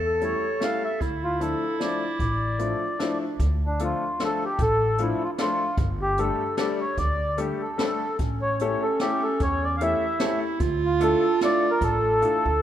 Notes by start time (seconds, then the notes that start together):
Already playing: E2 A4
0.06 A4
0.20 G3 A3 C#4 E4 C#5, closed hi-hat
0.60 G3 A3 C#4 E4 F5, snare, closed hi-hat
0.84 E5
1.01 D2 E4, kick, closed hi-hat
1.24 F4
1.40 F3 A3 D4 E4 A4, closed hi-hat
1.80 F3 A3 D4 E4 D5, snare, closed hi-hat
2.19 A1 D5, kick, closed hi-hat
2.59 F3 A3 D4 E4 F4, closed hi-hat
2.99 F3 A3 D4 E4, snare, closed hi-hat
3.40 D2, kick, closed hi-hat
3.66 D4
3.79 F3 A3 D4 F4 A4, closed hi-hat
3.84 F4
4.20 F3 A3 D4 F4 A4, snare, closed hi-hat
4.24 A4
4.45 G4
4.59 A1 A4, kick, closed hi-hat
4.98 F3 A3 D4 E4 F4 A4, closed hi-hat
5.23 F4
5.38 F3 A3 D4 F4 A4, snare, closed hi-hat
5.77 G1, kick, closed hi-hat
6.02 G4
6.18 G3 A3 D4 G4 A4, closed hi-hat
6.57 G3 A3 D4 G4 A4 D5, snare, closed hi-hat
6.80 C#5
6.97 D2 D5, kick, closed hi-hat
7.37 G3 A3 D4 G4 A4, closed hi-hat
7.62 A4
7.78 G3 A3 D4 G4 A4, snare, closed hi-hat
8.19 A1 C#4, kick, closed hi-hat
8.42 C#5
8.59 A3 C#4 E4 G4 A4 C#5, closed hi-hat
8.82 A4
9.00 A3 C#4 E4 G4 A4, snare, closed hi-hat
9.23 A4
9.40 E2 C#5, kick, closed hi-hat
9.64 D5
9.77 F5, closed hi-hat
9.81 A3 C#4 E4 G4 A4 E5
10.20 A3 C#4 E4 G4 A4, snare, closed hi-hat
10.60 D2 F4, kick, closed hi-hat
10.85 F4
11.00 A3 D4 E4 F4 A4, closed hi-hat
11.41 A3 D4 E4 F4 A4 D5, snare, closed hi-hat
11.71 A#4
11.81 A1 A4, kick, closed hi-hat
12.22 A3 D4 E4 F4 A4, closed hi-hat
12.45 D2